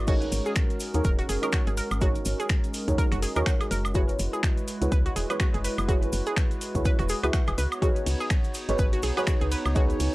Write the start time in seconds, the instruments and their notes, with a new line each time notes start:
Already playing: fm bass G#1, analog synth pad F#4
0.07 analog synth pad G#3 C#4 A#4, synth stab D#4 F#4 G#4 A#4 C#5, synth arpeggio sound F#4, kick, closed hi-hat, crash, cabasa
0.22 closed hi-hat, cabasa
0.32 fm bass G#1, open hi-hat, cabasa
0.46 synth arpeggio sound G#4, cabasa
0.56 finger snap, kick, closed hi-hat, cabasa
0.70 closed hi-hat, cabasa
0.80 open hi-hat, cabasa
0.94 fm bass D#2, synth stab D#4 F#4 G#4 A#4 C#5, closed hi-hat, cabasa
1.04 fm bass D#1, synth arpeggio sound A#4, kick, closed hi-hat, cabasa
1.19 synth arpeggio sound F#4, closed hi-hat, cabasa
1.29 fm bass F#1, synth arpeggio sound G#4, open hi-hat, cabasa
1.42 synth stab D#4 F#4 G#4 A#4 C#5, synth arpeggio sound A#4, closed hi-hat, cabasa, high woodblock
1.52 synth arpeggio sound F#4, finger snap, kick, closed hi-hat, cabasa
1.67 fm bass G#1, synth arpeggio sound G#4, closed hi-hat, cabasa
1.77 synth arpeggio sound A#4, open hi-hat, cabasa
1.91 fm bass G#1, cabasa, high woodblock
2.00 synth stab D#4 F#4 G#4 A#4 C#5, synth arpeggio sound F#4, kick, closed hi-hat, cabasa
2.15 closed hi-hat, cabasa
2.25 fm bass G#1, open hi-hat, cabasa
2.40 synth arpeggio sound G#4, closed hi-hat, cabasa
2.49 finger snap, kick, closed hi-hat, cabasa
2.64 closed hi-hat, cabasa
2.74 open hi-hat, cabasa
2.88 fm bass D#2, synth stab D#4 F#4 G#4 A#4 C#5, kick, closed hi-hat, cabasa
2.98 synth arpeggio sound A#4, kick, closed hi-hat, cabasa
3.12 fm bass F#1, synth arpeggio sound F#4, finger snap, closed hi-hat, cabasa
3.22 synth arpeggio sound G#4, open hi-hat, cabasa
3.35 fm bass D#2, synth stab D#4 F#4 G#4 A#4 C#5, synth arpeggio sound A#4, cabasa, high woodblock
3.46 synth arpeggio sound F#4, finger snap, kick, closed hi-hat, cabasa
3.61 synth arpeggio sound G#4, closed hi-hat, cabasa, high woodblock
3.71 fm bass F#1, synth arpeggio sound A#4, open hi-hat, cabasa
3.85 cabasa, high woodblock
3.94 synth stab E4 F#4 G#4 B4 C#5, analog synth pad E4 F#4 B4, synth arpeggio sound F#4, kick, closed hi-hat, cabasa
4.09 closed hi-hat, cabasa
4.19 fm bass F#1, open hi-hat, cabasa
4.33 synth arpeggio sound G#4, cabasa
4.43 finger snap, kick, closed hi-hat, cabasa
4.57 closed hi-hat, cabasa
4.68 open hi-hat, cabasa
4.81 fm bass C#2, synth stab E4 F#4 G#4 B4 C#5, closed hi-hat, cabasa
4.92 fm bass C#2, synth arpeggio sound B4, kick, closed hi-hat, cabasa
5.06 synth arpeggio sound F#4, closed hi-hat, cabasa
5.16 fm bass E1, synth arpeggio sound G#4, open hi-hat, cabasa
5.29 synth stab E4 F#4 G#4 B4 C#5, synth arpeggio sound B4, closed hi-hat, cabasa, high woodblock
5.40 synth arpeggio sound F#4, finger snap, kick, closed hi-hat, cabasa
5.54 fm bass F#1, synth arpeggio sound G#4, closed hi-hat, cabasa
5.64 synth arpeggio sound B4, open hi-hat, cabasa
5.78 fm bass F#1, cabasa, high woodblock
5.88 synth stab E4 F#4 G#4 B4 C#5, synth arpeggio sound F#4, kick, closed hi-hat, cabasa
6.03 closed hi-hat, cabasa
6.13 fm bass F#1, open hi-hat, cabasa
6.26 synth arpeggio sound G#4, closed hi-hat, cabasa
6.37 finger snap, kick, closed hi-hat, cabasa
6.51 closed hi-hat, cabasa
6.61 open hi-hat, cabasa
6.75 fm bass C#2, synth stab E4 F#4 G#4 B4 C#5, kick, closed hi-hat, cabasa
6.85 synth arpeggio sound B4, kick, closed hi-hat, cabasa
6.99 fm bass E1, synth arpeggio sound F#4, finger snap, closed hi-hat, cabasa
7.09 synth arpeggio sound G#4, open hi-hat, cabasa
7.23 fm bass C#2, synth stab E4 F#4 G#4 B4 E5, synth arpeggio sound B4, closed hi-hat, cabasa, high woodblock
7.33 synth arpeggio sound F#4, finger snap, kick, closed hi-hat, cabasa
7.47 fm bass E1, synth arpeggio sound G#4, closed hi-hat, cabasa, high woodblock
7.58 fm bass C#2, analog synth pad B3 D#4 C#5, synth arpeggio sound B4, open hi-hat, cabasa
7.72 cabasa, high woodblock
7.81 synth stab D#4 F#4 G#4 B4 C#5, synth arpeggio sound F#4, kick, closed hi-hat, cabasa
7.96 closed hi-hat, cabasa
8.06 fm bass C#2, open hi-hat, ride, cabasa
8.20 synth arpeggio sound G#4, cabasa
8.30 finger snap, kick, closed hi-hat, cabasa
8.44 closed hi-hat, cabasa
8.54 open hi-hat, ride, cabasa
8.68 fm bass G#1, synth stab D#4 F#4 G#4 B4 C#5, closed hi-hat, cabasa
8.78 fm bass G#1, synth arpeggio sound B4, kick, closed hi-hat, cabasa
8.93 synth arpeggio sound F#4, closed hi-hat, cabasa
9.02 fm bass B1, synth arpeggio sound G#4, open hi-hat, ride, cabasa
9.16 synth stab D#4 F#4 G#4 B4 C#5, synth arpeggio sound B4, closed hi-hat, cabasa, high woodblock
9.27 synth arpeggio sound F#4, finger snap, kick, closed hi-hat, cabasa
9.41 fm bass C#2, synth arpeggio sound G#4, closed hi-hat, cabasa
9.51 synth arpeggio sound B4, open hi-hat, ride, cabasa
9.65 fm bass C#2, cabasa, high woodblock
9.75 synth stab D#4 F#4 G#4 B4 C#5, synth arpeggio sound F#4, kick, closed hi-hat, cabasa
9.90 closed hi-hat, cabasa
10.00 fm bass C#2, open hi-hat, ride, cabasa